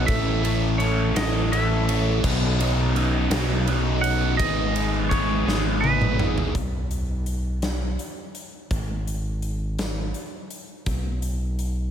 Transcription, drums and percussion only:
0.08 kick loud
0.08 ride loud
0.45 ride medium
0.80 ride medium
1.16 snare loud
1.16 ride loud
1.53 ride medium
1.89 ride medium
2.24 kick loud
2.24 crash loud
2.60 ride medium
2.96 ride medium
3.31 snare loud
3.31 ride loud
3.67 ride medium
4.04 ride medium
4.40 kick loud
4.40 ride loud
4.76 ride medium
5.11 kick medium
5.11 ride medium
5.48 snare medium
5.84 high tom medium
6.01 mid tom medium
6.19 mid tom loud
6.38 floor tom loud
6.55 kick loud
6.55 closed hi-hat medium
6.91 closed hi-hat medium
7.26 closed hi-hat medium
7.62 snare loud
7.62 closed hi-hat medium
7.99 closed hi-hat medium
8.35 closed hi-hat medium
8.71 kick loud
8.71 closed hi-hat medium
9.07 closed hi-hat medium
9.42 closed hi-hat medium
9.79 snare loud
9.79 closed hi-hat medium
10.14 closed hi-hat medium
10.50 closed hi-hat medium
10.86 kick loud
10.86 closed hi-hat medium
11.22 closed hi-hat medium
11.59 closed hi-hat medium

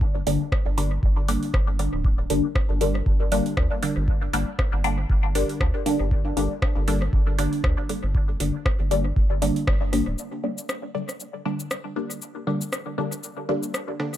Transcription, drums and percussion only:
0.01 kick loud
0.27 open hi-hat medium
0.52 kick loud
0.52 cross-stick medium
0.78 open hi-hat medium
1.03 kick loud
1.28 open hi-hat medium
1.43 open hi-hat soft
1.54 kick loud
1.54 cross-stick medium
1.79 open hi-hat medium
2.05 kick loud
2.30 open hi-hat medium
2.55 kick loud
2.55 cross-stick medium
2.81 open hi-hat medium
2.95 cross-stick soft
3.06 kick loud
3.32 open hi-hat medium
3.46 open hi-hat soft
3.57 kick loud
3.57 cross-stick medium
3.83 open hi-hat medium
4.08 kick loud
4.33 open hi-hat medium
4.59 kick loud
4.59 cross-stick medium
4.84 open hi-hat medium
5.10 kick loud
5.35 open hi-hat medium
5.49 open hi-hat soft
5.60 kick loud
5.60 cross-stick medium
5.86 open hi-hat medium
6.11 kick loud
6.37 open hi-hat medium
6.62 kick loud
6.62 cross-stick medium
6.88 open hi-hat medium
7.02 cross-stick soft
7.13 kick loud
7.39 open hi-hat medium
7.53 open hi-hat soft
7.64 kick loud
7.64 cross-stick medium
7.89 open hi-hat medium
8.15 kick loud
8.40 open hi-hat medium
8.66 kick loud
8.66 cross-stick medium
8.91 open hi-hat medium
9.16 kick loud
9.42 open hi-hat medium
9.56 open hi-hat soft
9.67 kick loud
9.67 cross-stick medium
9.93 cross-stick soft
9.93 open hi-hat medium
10.18 cabasa soft
10.58 cabasa soft
10.69 cross-stick medium
10.69 cabasa soft
11.09 cross-stick soft
11.09 cabasa soft
11.20 cabasa soft
11.60 cabasa soft
11.71 cross-stick medium
11.71 cabasa soft
12.11 cabasa soft
12.22 cabasa soft
12.61 cabasa soft
12.73 cross-stick medium
12.73 cabasa soft
13.12 cabasa soft
13.23 cabasa soft
13.63 cabasa soft
13.74 cross-stick medium
13.74 cabasa soft
14.00 cross-stick soft
14.14 cabasa soft

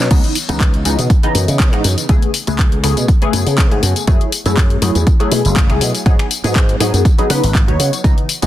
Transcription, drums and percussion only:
0.11 kick loud
0.11 closed hi-hat medium
0.11 crash medium
0.11 tambourine soft
0.24 closed hi-hat soft
0.35 open hi-hat loud
0.35 tambourine medium
0.49 closed hi-hat soft
0.49 tambourine soft
0.60 kick loud
0.60 clap loud
0.60 closed hi-hat medium
0.60 tambourine soft
0.74 closed hi-hat soft
0.85 open hi-hat loud
0.85 tambourine medium
0.99 closed hi-hat soft
0.99 tambourine soft
1.10 kick loud
1.10 closed hi-hat medium
1.10 tambourine soft
1.23 closed hi-hat soft
1.35 open hi-hat loud
1.35 tambourine medium
1.48 closed hi-hat soft
1.48 tambourine soft
1.60 kick loud
1.60 clap loud
1.60 closed hi-hat medium
1.73 finger snap medium
1.73 closed hi-hat soft
1.84 open hi-hat loud
1.84 tambourine medium
1.98 closed hi-hat soft
1.98 tambourine soft
2.09 kick loud
2.09 closed hi-hat medium
2.09 tambourine soft
2.22 closed hi-hat soft
2.34 open hi-hat loud
2.34 tambourine medium
2.47 closed hi-hat soft
2.47 tambourine soft
2.59 kick loud
2.59 clap loud
2.59 closed hi-hat medium
2.59 tambourine soft
2.72 closed hi-hat soft
2.84 finger snap medium
2.84 open hi-hat loud
2.84 tambourine medium
2.97 closed hi-hat soft
2.97 tambourine soft
3.08 kick loud
3.08 closed hi-hat medium
3.08 tambourine soft
3.22 closed hi-hat soft
3.33 open hi-hat loud
3.33 tambourine medium
3.47 open hi-hat medium
3.47 tambourine soft
3.58 kick loud
3.58 clap loud
3.58 closed hi-hat medium
3.58 tambourine soft
3.71 closed hi-hat soft
3.83 open hi-hat loud
3.83 tambourine medium
3.96 closed hi-hat soft
3.96 tambourine soft
4.07 kick loud
4.07 closed hi-hat medium
4.07 tambourine soft
4.21 closed hi-hat soft
4.32 open hi-hat loud
4.32 tambourine medium
4.46 closed hi-hat soft
4.46 tambourine soft
4.57 kick loud
4.57 clap loud
4.57 closed hi-hat medium
4.57 tambourine soft
4.70 closed hi-hat soft
4.82 open hi-hat loud
4.82 tambourine medium
4.95 closed hi-hat soft
4.95 tambourine soft
5.07 kick loud
5.07 closed hi-hat medium
5.07 tambourine soft
5.20 closed hi-hat soft
5.32 open hi-hat loud
5.32 tambourine medium
5.45 closed hi-hat soft
5.45 tambourine soft
5.56 kick loud
5.56 clap loud
5.56 closed hi-hat medium
5.70 finger snap medium
5.70 closed hi-hat soft
5.81 open hi-hat loud
5.81 tambourine medium
5.95 closed hi-hat soft
5.95 tambourine soft
6.06 kick loud
6.06 closed hi-hat medium
6.06 tambourine soft
6.19 finger snap medium
6.19 closed hi-hat soft
6.31 open hi-hat loud
6.31 tambourine medium
6.44 closed hi-hat soft
6.44 tambourine soft
6.56 kick loud
6.56 clap loud
6.56 closed hi-hat medium
6.69 closed hi-hat soft
6.80 finger snap medium
6.80 open hi-hat loud
6.80 tambourine medium
6.94 closed hi-hat soft
6.94 tambourine soft
7.05 kick loud
7.05 closed hi-hat medium
7.05 tambourine soft
7.19 closed hi-hat soft
7.30 finger snap medium
7.30 open hi-hat loud
7.30 tambourine medium
7.44 open hi-hat medium
7.44 tambourine soft
7.55 kick loud
7.55 clap loud
7.55 closed hi-hat medium
7.55 tambourine soft
7.68 closed hi-hat soft
7.80 open hi-hat loud
7.80 tambourine medium
7.93 closed hi-hat soft
7.93 tambourine soft
8.04 kick loud
8.04 closed hi-hat medium
8.04 tambourine soft
8.18 closed hi-hat soft
8.29 open hi-hat loud
8.29 tambourine medium
8.42 closed hi-hat soft
8.42 tambourine soft

